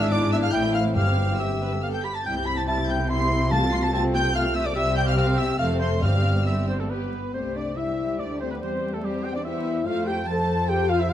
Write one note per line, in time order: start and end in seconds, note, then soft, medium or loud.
0.00 0.49 G#1 medium
0.00 0.49 G#2 loud
0.00 0.49 D4 medium
0.00 0.55 D4 loud
0.00 0.11 D4 medium
0.00 0.91 E4 loud
0.00 0.11 G#4 medium
0.00 0.05 E5 loud
0.00 0.11 E5 loud
0.00 0.14 E5 loud
0.00 0.12 E6 loud
0.11 0.21 B3 medium
0.11 0.21 E4 medium
0.11 0.19 D5 loud
0.11 0.17 D5 medium
0.11 0.32 D5 loud
0.11 0.32 D6 loud
0.22 0.32 D4 medium
0.22 0.32 G#4 medium
0.31 0.43 B3 medium
0.31 0.42 E4 medium
0.31 0.42 E5 loud
0.31 0.37 E5 loud
0.31 0.36 E6 loud
0.42 0.53 D4 medium
0.42 0.53 G#4 medium
0.42 0.47 F5 loud
0.42 0.52 F5 loud
0.42 0.48 F5 loud
0.42 0.53 F6 loud
0.52 0.95 A1 medium
0.52 0.95 A2 medium
0.52 0.63 A3 medium
0.52 1.82 C4 medium
0.52 0.94 E4 loud
0.52 0.63 E4 medium
0.52 0.58 G5 loud
0.52 0.74 G5 loud
0.52 0.63 G5 loud
0.52 0.74 G6 loud
0.63 0.74 C4 medium
0.63 0.74 A4 medium
0.74 0.85 A3 medium
0.74 0.85 E4 medium
0.74 0.94 F5 medium
0.74 0.94 F5 loud
0.74 0.84 F5 medium
0.74 0.82 F6 loud
0.85 0.96 C4 medium
0.85 0.96 A4 medium
0.95 2.05 G1 medium
0.95 2.05 G2 medium
0.95 1.56 G2 loud
0.95 1.06 E4 medium
0.95 2.01 G4 medium
0.95 1.06 G4 medium
0.95 2.04 G4 medium
0.95 1.38 F5 loud
0.95 1.39 F5 loud
0.95 1.38 F6 loud
1.07 1.18 C4 medium
1.07 1.16 E4 medium
1.17 1.28 E4 medium
1.17 1.28 G4 medium
1.29 1.39 C4 medium
1.29 1.39 E4 medium
1.39 1.48 G4 medium
1.39 1.82 E5 medium
1.39 1.81 E5 medium
1.39 1.82 E6 medium
1.61 1.71 B4 medium
1.73 1.81 A4 medium
1.82 2.04 B3 medium
1.82 2.04 A4 medium
1.82 1.92 F5 medium
1.82 1.87 F5 medium
1.82 1.88 F5 medium
1.82 1.93 F6 medium
1.92 1.97 G5 medium
1.92 2.06 G5 medium
1.92 2.03 G6 medium
2.03 2.25 G4 medium
2.03 2.08 B5 medium
2.03 2.16 B5 medium
2.03 2.17 B5 medium
2.03 2.14 B6 medium
2.14 2.25 A5 medium
2.14 2.25 A6 medium
2.25 4.72 C2 medium
2.25 4.72 C3 medium
2.25 2.35 G3 medium
2.25 3.06 C4 medium
2.25 3.05 E4 medium
2.25 2.35 E4 medium
2.25 2.33 G5 medium
2.25 2.47 G5 loud
2.25 2.35 G5 loud
2.25 2.46 G6 loud
2.36 2.47 C4 medium
2.36 2.47 G4 medium
2.46 2.57 G3 medium
2.46 2.57 E4 medium
2.46 2.56 B5 medium
2.46 2.59 B5 medium
2.46 2.56 B6 loud
2.56 2.67 C4 medium
2.56 2.68 G4 medium
2.56 2.66 A5 medium
2.56 2.67 A5 medium
2.56 2.68 A5 medium
2.56 2.66 A6 medium
2.67 2.77 G3 medium
2.67 2.77 E4 medium
2.67 3.07 E4 medium
2.67 2.75 A5 medium
2.67 2.73 A5 loud
2.67 2.77 A5 loud
2.67 2.88 A6 loud
2.79 2.89 C4 medium
2.79 2.89 G4 medium
2.89 2.99 G3 medium
2.89 2.99 E4 medium
2.89 3.11 G5 medium
2.89 2.97 G5 medium
2.89 3.10 G5 medium
2.89 3.10 G6 medium
2.99 3.09 C4 medium
2.99 3.10 G4 medium
3.08 3.19 G3 medium
3.08 3.51 C4 medium
3.08 3.52 E4 medium
3.08 3.51 E4 medium
3.08 3.19 E4 medium
3.08 3.50 C6 loud
3.08 3.53 C6 loud
3.08 3.51 C7 loud
3.20 3.30 C4 medium
3.20 3.31 G4 medium
3.30 3.41 G3 medium
3.30 3.41 E4 medium
3.41 3.52 C4 medium
3.41 3.52 G4 medium
3.50 4.10 C3 loud
3.50 3.61 A3 medium
3.50 3.92 C4 medium
3.50 3.92 F4 loud
3.50 3.61 F4 medium
3.50 3.92 F4 medium
3.50 3.56 A5 loud
3.50 3.72 A5 loud
3.50 3.73 A5 loud
3.50 3.72 A6 loud
3.62 3.72 C4 medium
3.62 3.72 A4 medium
3.72 3.83 A3 medium
3.72 3.83 F4 medium
3.72 3.77 C6 loud
3.72 3.85 C6 loud
3.72 3.83 C7 loud
3.83 3.93 C4 medium
3.83 3.94 A4 medium
3.83 3.93 A5 medium
3.83 3.93 A5 loud
3.83 3.93 A6 loud
3.93 4.03 A3 medium
3.93 4.36 C4 medium
3.93 4.34 C4 medium
3.93 4.03 F4 medium
3.93 4.34 F4 medium
3.93 4.03 A5 loud
3.93 4.00 A5 loud
3.93 4.02 A5 loud
3.93 4.02 A6 loud
4.04 4.14 C4 medium
4.04 4.14 A4 medium
4.14 4.24 A3 medium
4.14 4.24 F4 medium
4.14 4.35 G5 loud
4.14 4.21 G5 loud
4.14 4.35 G5 loud
4.14 4.35 G6 loud
4.24 4.35 C4 medium
4.24 4.35 A4 medium
4.34 4.44 A3 medium
4.34 4.75 A3 medium
4.34 4.75 C4 medium
4.34 4.44 F4 medium
4.34 4.75 F4 medium
4.34 4.41 F5 loud
4.34 4.55 F5 loud
4.34 4.44 F5 loud
4.34 4.55 F6 loud
4.45 4.55 C4 medium
4.45 4.55 A4 medium
4.55 4.66 A3 medium
4.55 4.66 F4 medium
4.55 4.67 E5 medium
4.55 4.67 E5 loud
4.55 4.66 E5 loud
4.55 4.66 E6 loud
4.65 4.75 C4 medium
4.65 4.76 A4 medium
4.65 4.77 D5 medium
4.65 4.75 D5 medium
4.65 4.76 D5 medium
4.65 4.76 D6 loud
4.75 5.55 C2 loud
4.75 5.55 C3 medium
4.75 5.16 G3 loud
4.75 5.55 C4 medium
4.75 5.55 G4 medium
4.75 5.55 G4 loud
4.75 4.96 E5 loud
4.75 4.97 E5 loud
4.75 4.97 E6 loud
4.96 5.06 G5 loud
4.96 5.02 G5 loud
4.96 5.01 G5 loud
4.96 5.07 G6 loud
5.06 5.17 F5 loud
5.06 5.11 F5 loud
5.06 5.12 F5 medium
5.06 5.16 F6 loud
5.17 5.58 C4 medium
5.17 5.37 F5 loud
5.17 5.40 F5 loud
5.17 5.24 F5 loud
5.17 5.25 F6 loud
5.37 5.59 E5 medium
5.37 5.58 E5 medium
5.37 5.45 E5 medium
5.37 5.58 E6 loud
5.58 6.01 F1 medium
5.58 6.02 F2 medium
5.58 6.03 A3 medium
5.58 6.02 C4 medium
5.58 6.01 C4 medium
5.58 6.02 A4 medium
5.58 6.03 A4 medium
5.58 5.80 F5 loud
5.58 5.68 F5 medium
5.58 5.65 F5 loud
5.58 5.66 F6 medium
5.80 5.90 C5 medium
5.80 6.03 C5 medium
5.80 6.02 C5 medium
5.80 6.02 C6 loud
6.01 7.13 G1 medium
6.01 6.64 G2 loud
6.01 7.13 G2 medium
6.01 7.12 G3 medium
6.01 6.45 C4 medium
6.01 6.46 C4 medium
6.01 6.46 G4 medium
6.01 6.45 G4 medium
6.01 6.45 F5 medium
6.01 6.26 F5 medium
6.01 6.46 F5 loud
6.01 6.46 F6 medium
6.46 6.67 C4 medium
6.46 6.89 C4 medium
6.46 6.67 G4 medium
6.46 6.89 G4 medium
6.46 6.68 E5 medium
6.46 6.68 E6 medium
6.68 6.78 C4 medium
6.68 6.72 C5 medium
6.68 6.78 C5 medium
6.68 6.81 C5 medium
6.68 6.79 C5 medium
6.79 6.85 A3 medium
6.79 6.83 A4 medium
6.79 6.84 A4 medium
6.79 6.92 A4 medium
6.79 6.84 A4 medium
6.79 6.91 A4 medium
6.90 7.13 B3 medium
6.90 7.33 B3 medium
6.90 7.13 G4 medium
6.90 7.00 G4 medium
6.90 7.33 B4 medium
6.90 7.36 B4 medium
6.90 7.33 B4 soft
7.33 8.16 C2 soft
7.33 9.88 G3 soft
7.33 7.74 A3 medium
7.33 7.55 C4 medium
7.33 7.74 G4 soft
7.33 7.55 C5 medium
7.33 7.55 C5 soft
7.33 7.55 C5 medium
7.33 7.58 C5 medium
7.33 9.82 C5 medium
7.33 7.54 C5 medium
7.55 7.77 D4 medium
7.55 7.61 D5 medium
7.55 7.76 D5 medium
7.55 7.77 D5 medium
7.55 7.79 D5 medium
7.77 8.20 G3 soft
7.77 8.19 E4 medium
7.77 8.60 G4 soft
7.77 8.21 E5 medium
7.77 8.19 E5 medium
7.77 8.20 E5 medium
7.77 8.21 E5 medium
8.19 8.61 D2 medium
8.19 8.62 A3 medium
8.19 8.40 D4 medium
8.19 8.40 D5 medium
8.19 8.42 D5 medium
8.19 8.40 D5 medium
8.19 8.41 D5 medium
8.40 8.51 C4 medium
8.40 8.50 C5 medium
8.40 8.51 C5 medium
8.40 8.45 C5 medium
8.40 8.53 C5 medium
8.40 8.51 C5 medium
8.50 8.62 B3 medium
8.50 8.55 B4 medium
8.50 8.56 B4 medium
8.50 8.62 B4 medium
8.50 8.64 B4 medium
8.50 8.62 B4 medium
8.61 9.86 E2 medium
8.61 9.03 G3 medium
8.61 8.93 C4 medium
8.61 9.02 G4 medium
8.61 8.95 C5 medium
8.61 8.92 C5 medium
8.61 8.70 C5 medium
8.61 9.02 C5 medium
8.61 8.93 C5 medium
8.61 8.71 C5 medium
8.92 9.04 A3 medium
8.92 9.02 A4 medium
8.92 8.97 A4 medium
8.92 9.06 A4 medium
8.92 9.03 A4 medium
8.92 9.04 A4 medium
9.03 9.24 G3 medium
9.03 9.45 C4 medium
9.03 9.12 G4 medium
9.03 9.43 G4 medium
9.03 9.25 G4 medium
9.03 9.24 G4 medium
9.03 9.26 G4 medium
9.03 9.13 G4 medium
9.03 9.43 C5 soft
9.23 9.35 G4 medium
9.23 9.34 G5 medium
9.23 9.35 G5 medium
9.23 9.34 G5 medium
9.23 9.35 G5 medium
9.34 9.40 D4 medium
9.34 9.46 D5 medium
9.34 9.44 D5 medium
9.34 9.39 D5 medium
9.34 9.40 D5 medium
9.34 9.45 D5 medium
9.44 9.85 B3 medium
9.44 9.86 E4 medium
9.44 9.85 G4 medium
9.44 9.85 C5 medium
9.44 9.87 E5 medium
9.44 9.85 E5 medium
9.44 9.88 E5 medium
9.44 9.85 E5 medium
9.44 9.86 E5 medium
9.85 11.07 F2 medium
9.85 11.13 F3 medium
9.85 10.26 A3 medium
9.85 10.07 F4 medium
9.85 10.26 A4 medium
9.85 11.13 C5 medium
9.85 10.26 C5 medium
9.85 10.05 F5 medium
9.85 10.06 F5 medium
9.85 10.09 F5 medium
9.85 10.06 F5 medium
9.85 9.95 F5 medium
10.06 10.16 G4 medium
10.06 10.26 G5 medium
10.06 10.27 G5 medium
10.06 10.13 G5 medium
10.06 10.29 G5 medium
10.26 11.08 F3 medium
10.26 11.08 A4 medium
10.26 10.68 A4 loud
10.26 11.08 C5 medium
10.26 10.68 A5 medium
10.26 10.70 A5 medium
10.26 10.68 A5 medium
10.26 10.69 A5 medium
10.68 10.90 G4 loud
10.68 10.89 G5 medium
10.68 10.90 G5 medium
10.68 10.89 G5 medium
10.68 10.92 G5 medium
10.88 11.00 F4 loud
10.88 10.99 F5 medium
10.88 11.01 F5 medium
10.88 11.00 F5 medium
10.88 11.02 F5 medium
10.99 11.10 E4 medium
10.99 11.09 E5 medium
10.99 11.10 E5 medium
10.99 11.12 E5 medium
11.09 11.13 A1 medium
11.09 11.13 F3 medium
11.09 11.13 F4 loud
11.09 11.13 A4 medium
11.09 11.13 C5 medium
11.09 11.13 F5 medium
11.09 11.13 F5 loud